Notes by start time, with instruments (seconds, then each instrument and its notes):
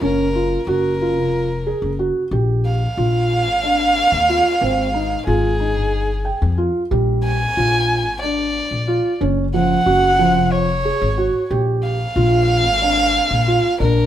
0.01 upright bass F#1, felt piano C#4, violin A#4
0.35 felt piano F4
0.67 upright bass F#1, felt piano F#4, violin A#4
1.01 felt piano F4
1.16 upright bass F1
1.67 felt piano G#4
1.82 upright bass F#1
1.99 felt piano F#4
2.31 upright bass A#1, felt piano G4
2.66 violin F5
2.97 upright bass A#1, felt piano F4
3.47 upright bass G#1
3.63 felt piano D4
4.12 upright bass D#2
4.29 felt piano F4
4.61 upright bass G#1, felt piano C4
4.94 felt piano D#4
5.27 upright bass G#1, felt piano F4, violin G#4
5.60 felt piano D#4
5.76 upright bass G1
6.25 felt piano G5
6.42 upright bass F2
6.58 felt piano F4
6.91 upright bass A#1, felt piano G3
7.24 violin G#5
7.57 upright bass A#1, felt piano F4
8.06 upright bass G#1
8.22 felt piano D4, violin D5
8.71 upright bass A#1
8.88 felt piano F4
9.21 upright bass F#1, felt piano C#4
9.54 felt piano F3, violin F#5
9.86 upright bass F#1, felt piano F#4
10.19 felt piano F3
10.35 upright bass F1
10.52 violin C#5
10.85 felt piano G#4
11.02 upright bass G#1
11.18 felt piano F#4
11.50 upright bass A#1, felt piano G4
11.83 violin F5
12.16 upright bass A#1, felt piano F4
12.65 upright bass G#1
12.82 felt piano D4
13.31 upright bass A#1
13.47 felt piano F4
13.80 upright bass A#1, felt piano D4, violin A#4